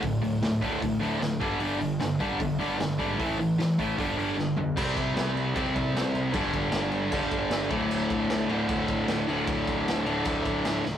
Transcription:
<<
  \new Staff \with { instrumentName = "Distorted electric guitar" } { \clef bass \time 4/4 \key g \lydian \tempo 4 = 153 <d, a,>8 <d, a,>8 <d, a,>8 <d, a, d>8 <d, a,>8 <d, a, d>8 <d, a,>8 <g, d g>8 | <g, d g>8 <g, d>8 <g, d>8 <g, d g>8 <g, d>8 <g, d g>8 <g, d>8 <g, d g>8 | <a, e a>8 <a, e>8 <a, e>8 <a, e a>8 <g, d g>8 <g, d g>8 <g, d>8 <g, d>8 | \key c \lydian <c g c'>2 <c g c'>2 |
<g, d g>2 <g, d g>4. <d, a, d>8~ | <d, a, d>4. <d, a, d>2 <d, a, d>8~ | <d, a, d>4. <d, a, d>2 r8 | }
  \new Staff \with { instrumentName = "Picked electric bass" } { \clef bass \time 4/4 \key g \lydian d,,8 d,,8 d,,4 d,,8 d,,8 d,,8 g,,8 | g,,8 g,,8 g,,8 g,,8 g,,8 g,,8 g,,8 gis,,8 | a,,8 a,,8 a,,4 g,,8 g,,8 g,,8 b,,8 | \key c \lydian c,8 c,8 c,8 c,8 c,8 c,8 c,8 c,8 |
g,,8 g,,8 g,,8 g,,8 g,,8 g,,8 g,,8 d,,8 | d,,8 d,,8 d,,8 d,,8 d,,8 d,,8 d,,8 d,,8 | d,,8 d,,8 d,,8 d,,8 d,,8 d,,8 d,,8 d,,8 | }
  \new DrumStaff \with { instrumentName = "Drums" } \drummode { \time 4/4 <hho bd>8 hho8 <hho sn>8 <hho bd>8 <hho bd>8 hho8 <hho sn>8 <hho bd>8 | hho8 hho8 <hho sn>8 <hho bd>8 <hho bd>8 hho8 <hho sn>8 <hho bd>8 | <hho bd>8 hho8 <hho sn>8 <hho bd>8 <hho bd>8 hho8 sn8 tomfh8 | <cymc bd>8 <cymc bd>8 <cymc sn>8 cymc8 <cymc bd>8 <cymc bd>8 <cymc sn>8 cymc8 |
<cymc bd>8 <cymc bd>8 <cymc sn>8 cymc8 <cymc bd>8 <cymc bd>8 <cymc sn>8 <cymc bd>8 | cymc8 <cymc bd>8 <cymc sn>8 cymc8 <cymc bd>8 <cymc bd>8 <cymc sn>8 cymc8 | <cymc bd>8 <cymc bd>8 <cymc sn>8 cymc8 <cymc bd>8 <cymc bd>8 <cymc sn>8 sn8 | }
>>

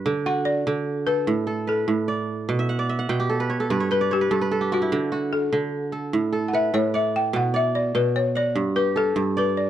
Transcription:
<<
  \new Staff \with { instrumentName = "Balafon" } { \time 12/8 \key d \major \tempo 4. = 99 r8 fis''8 d''4. b'4. a'2~ | a'8 r2. b'8 g'4. fis'8~ | fis'4 a'2~ a'8 r16. fis''32 e''8 cis''8 e''8 g''8 | fis''8 e''8 d''8 b'8 cis''8 d''4 b'8 a'4 b'8 d''8 | }
  \new Staff \with { instrumentName = "Kora" } { \time 12/8 \key d \major << { r1. | r16 e''16 fis''16 d''16 e''16 fis''16 g''16 g'16 a'16 b'16 cis''16 a'16 b'16 cis''16 b'16 d''16 cis''16 b'16 a'16 b'16 a'16 g'16 fis'16 e'16~ | e'16 r1 r4. r16 | r1. | } \\ { b'8 fis'4. r8 a'4 a'8 b'4 d''4~ | d''8 r1 r4. | r8 fis'4. r8 a'4 a'8 b'4 d''4~ | d''8 d''4. r8 fis''4 g'8 a'4 d''4 | } >> }
  \new Staff \with { instrumentName = "Kora" } { \clef bass \time 12/8 \key d \major d4 r8 d4 r8 a,4 r8 a,4 r8 | b,4 r8 b,4 r8 g,4 r8 g,4 r8 | d4 r8 d4 r8 a,4 r8 a,4 r8 | b,4 r8 b,4 r8 g,4 r8 g,4 r8 | }
>>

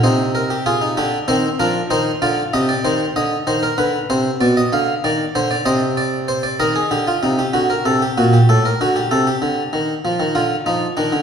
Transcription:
<<
  \new Staff \with { instrumentName = "Harpsichord" } { \time 12/8 \key c \minor \tempo 4. = 64 << { c''8 bes'8 aes'8 g'8 c''8 bes'8 c''8 d''8 ees''16 d''16 c''8 ees''8 c''16 bes'16 | r8 c''8 d''16 ees''16 f''8 d''8 c''16 d''16 ees''8 d''8 c''16 d''16 ees''4. | r1. | } \\ { ees'8. g'16 f'16 ees'16 d'8 c'8 d'8 ees'8 f'8 g'2 | b'2. c''4. bes'16 aes'16 g'16 f'16 ees'16 g'16 | fis'16 bes'16 a'16 g'16 fis'16 g'16 a'16 bes'16 fis'16 g'16 a'16 g'4.~ g'16 f'8 ees'8 d'8 | } >> }
  \new Staff \with { instrumentName = "Harpsichord" } { \clef bass \time 12/8 \key c \minor c4. d8 ees8 f8 ees8 d8 c8 ees8 d8 ees8 | d8 c8 b,8 d8 ees8 d8 c4. ees8 d8 c8 | d8 c8 bes,8 a,8 d8 c8 d8 ees8 f16 ees16 d8 f8 ees16 d16 | }
>>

